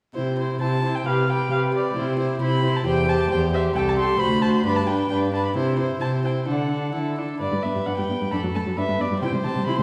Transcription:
0.15 0.56 C3 soft
0.15 0.37 E4 soft
0.15 0.37 C5 soft
0.38 0.60 E4 soft
0.38 0.60 C5 soft
0.61 1.01 C3 soft
0.61 0.83 E4 soft
0.61 0.83 C5 soft
0.61 0.97 A5 medium
0.84 1.06 E4 soft
0.84 1.06 C5 soft
0.95 1.08 G5 soft
1.06 1.46 C3 soft
1.06 1.28 G4 soft
1.06 1.29 B4 soft
1.06 1.31 F5 medium
1.29 1.51 G4 soft
1.29 1.52 B4 soft
1.29 1.51 G5 medium
1.51 1.91 C3 soft
1.51 1.72 G4 soft
1.51 1.74 B4 soft
1.51 1.59 F5 medium
1.73 1.96 G4 soft
1.73 1.96 B4 soft
1.73 1.96 D5 soft
1.96 2.36 C3 soft
1.96 2.18 E4 soft
1.96 2.18 C5 soft
2.18 2.41 E4 soft
2.18 2.41 C5 soft
2.42 2.81 C3 medium
2.42 2.63 E4 soft
2.42 2.63 C5 soft
2.42 2.78 B5 medium
2.64 2.85 E4 soft
2.64 2.86 C5 soft
2.77 2.86 A5 soft
2.86 3.26 E2 medium
2.86 3.08 G4 soft
2.86 3.08 C5 soft
2.86 3.11 G5 medium
3.08 3.30 G4 soft
3.08 3.30 C5 soft
3.08 3.31 A5 medium
3.31 3.71 E2 medium
3.31 3.53 G4 soft
3.31 3.52 C5 soft
3.31 3.39 G5 medium
3.53 3.75 G4 soft
3.53 3.75 C5 soft
3.53 3.62 E5 medium
3.76 4.15 C2 medium
3.76 3.98 G4 medium
3.76 3.98 A4 medium
3.76 3.80 G5 medium
3.88 3.93 A5 medium
3.97 4.20 G4 soft
3.97 4.19 A4 soft
3.97 4.20 C6 medium
4.19 4.60 D2 medium
4.19 4.43 F#4 soft
4.19 4.42 C5 soft
4.19 4.43 B5 medium
4.42 4.65 F#4 soft
4.42 4.65 C5 soft
4.42 4.53 A5 medium
4.54 4.64 C6 medium
4.64 5.06 G2 medium
4.64 4.88 D4 medium
4.64 4.88 B4 medium
4.64 4.78 B5 medium
4.76 4.88 A5 medium
4.87 5.10 D4 soft
4.87 5.11 B4 soft
4.87 5.09 G5 medium
5.10 5.51 G2 medium
5.10 5.33 D4 soft
5.10 5.33 B4 soft
5.10 5.18 G5 medium
5.33 5.55 D4 soft
5.33 5.55 B4 soft
5.33 5.44 A5 medium
5.45 5.49 B5 medium
5.55 5.96 C3 medium
5.55 5.78 E4 soft
5.55 5.78 C5 soft
5.79 6.01 E4 soft
5.79 6.01 C5 soft
6.01 6.43 C3 soft
6.01 6.24 E4 soft
6.01 6.25 C5 soft
6.01 6.09 A5 medium
6.25 6.48 E4 soft
6.25 6.47 C5 soft
6.25 6.33 G5 soft
6.48 6.89 D3 soft
6.48 6.70 D4 soft
6.48 6.70 A4 soft
6.48 6.94 F#5 soft
6.71 6.93 D4 soft
6.71 6.94 A4 soft
6.94 7.36 D3 soft
6.94 7.20 E4 soft
6.94 7.18 A4 soft
7.18 7.40 D4 soft
7.18 7.41 A4 soft
7.40 7.46 G2 soft
7.40 7.46 D4 soft
7.40 8.33 B4 soft
7.40 7.64 D5 medium
7.52 7.57 G2 soft
7.52 7.57 G3 soft
7.63 7.69 G2 soft
7.63 7.68 B3 soft
7.63 7.87 E5 soft
7.75 7.80 G2 soft
7.75 7.79 G3 soft
7.86 7.91 G2 soft
7.86 7.91 D4 soft
7.86 7.96 F#5 soft
7.97 8.03 G2 soft
7.97 8.03 G3 soft
7.97 8.31 G5 soft
8.10 8.14 G2 soft
8.10 8.15 B3 soft
8.21 8.26 G2 soft
8.21 8.25 G3 soft
8.31 8.37 F#2 soft
8.31 8.37 D4 soft
8.31 8.79 A4 soft
8.31 8.40 B5 medium
8.44 8.48 F#2 soft
8.44 8.48 F#3 soft
8.55 8.60 F#2 soft
8.55 8.60 A3 soft
8.55 8.63 A5 soft
8.66 8.71 F#2 soft
8.66 8.71 F#3 soft
8.77 8.82 G2 soft
8.77 8.82 D4 soft
8.77 9.21 B4 soft
8.77 9.02 E5 medium
8.88 8.93 G2 soft
8.88 8.93 G3 soft
8.99 9.04 G2 soft
8.99 9.04 B3 soft
8.99 9.21 D5 soft
9.11 9.16 G2 soft
9.11 9.16 G3 soft
9.22 9.27 C3 medium
9.22 9.27 E4 medium
9.22 9.83 C5 soft
9.22 9.30 G5 medium
9.33 9.37 C3 soft
9.33 9.38 G3 soft
9.44 9.49 C3 soft
9.44 9.50 C4 soft
9.44 9.66 A5 medium
9.56 9.60 C3 soft
9.56 9.61 G3 soft
9.66 9.71 C3 medium
9.66 9.72 E4 medium
9.66 9.78 B5 medium
9.78 9.83 C3 soft
9.78 9.83 G3 soft
9.78 9.83 C6 medium

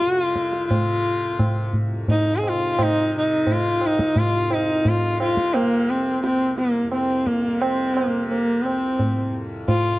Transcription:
0.00 1.30 C2 medium
0.00 1.93 F2 medium
0.00 0.07 C3 medium
0.00 0.09 F4 loud
0.00 tabla te medium
0.07 0.69 C3 medium
0.07 0.22 F#4 loud
0.19 0.68 F4 loud
0.19 tabla te medium
0.36 tabla ke medium
0.53 tabla te medium
0.68 2.54 C3 medium
0.68 1.69 F4 medium
0.68 tabla tin medium
0.68 tabla ge medium
1.31 3.75 C2 soft
1.39 tabla na medium
1.39 tabla ge medium
1.73 tabla ge soft
1.93 4.38 F2 medium
2.08 2.38 D#4 medium
2.08 tabla tin medium
2.08 tabla ge medium
2.37 2.50 G#4 medium
2.43 tabla na medium
2.48 2.84 F4 medium
2.54 3.16 C3 medium
2.79 tabla na medium
2.79 tabla ge medium
2.83 3.15 D#4 loud
3.16 5.01 C3 medium
3.16 3.54 D#4 medium
3.47 tabla tin medium
3.47 tabla ge medium
3.52 3.87 F4 medium
3.76 6.22 C2 medium
3.81 tabla na medium
3.86 4.20 D#4 medium
3.99 tabla ke medium
4.16 4.55 F4 loud
4.16 tabla tin medium
4.16 tabla ge medium
4.38 6.84 F2 medium
4.51 4.90 D#4 medium
4.51 tabla na medium
4.85 5.22 F4 medium
4.85 tabla tin medium
4.85 tabla ge medium
5.01 5.62 C3 medium
5.20 5.56 F4 medium
5.20 tabla na medium
5.37 tabla ke medium
5.54 5.92 A#3 medium
5.54 tabla na medium
5.62 7.46 C3 medium
5.90 6.22 C4 medium
6.23 8.68 C2 medium
6.23 6.55 C4 medium
6.23 tabla te medium
6.58 6.90 A#3 medium
6.58 tabla te medium
6.84 9.29 F2 soft
6.92 7.29 C4 medium
6.92 tabla na medium
7.27 7.63 A#3 medium
7.27 tabla ke medium
7.46 8.07 C3 medium
7.62 7.96 C4 medium
7.62 tabla na medium
7.95 8.28 A#3 medium
7.95 tabla na medium
8.07 9.91 C3 medium
8.29 8.64 A#3 medium
8.29 tabla tin medium
8.63 9.32 C4 medium
8.63 tabla na medium
8.69 9.99 C2 medium
8.99 tabla tin medium
8.99 tabla ge medium
9.30 9.99 F2 medium
9.68 9.99 F4 medium
9.68 tabla tin medium
9.68 tabla ge medium
9.91 9.99 C3 medium

